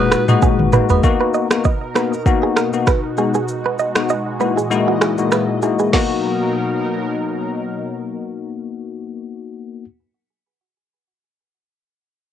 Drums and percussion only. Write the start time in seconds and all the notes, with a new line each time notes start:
0.11 finger snap, cross-stick, shaker
0.28 mid tom, high agogo, shaker
0.42 kick, high tom, low woodblock, shaker
0.59 mid tom
0.72 mid tom, shaker
0.89 floor tom, high agogo, shaker
1.03 kick, shaker
1.34 shaker
1.51 finger snap, cross-stick, shaker
1.64 kick, shaker
1.95 finger snap, cross-stick, shaker
2.13 shaker
2.26 kick, shaker
2.56 finger snap, cross-stick, shaker
2.73 shaker
2.87 finger snap, kick, cross-stick, shaker
3.17 shaker
3.34 shaker
3.48 shaker
3.79 shaker
3.96 finger snap, cross-stick, shaker
4.09 shaker
4.40 shaker
4.58 shaker
4.71 shaker
5.01 finger snap, cross-stick, shaker
5.18 shaker
5.32 finger snap, cross-stick, shaker
5.62 shaker
5.79 shaker
5.93 kick, snare, crash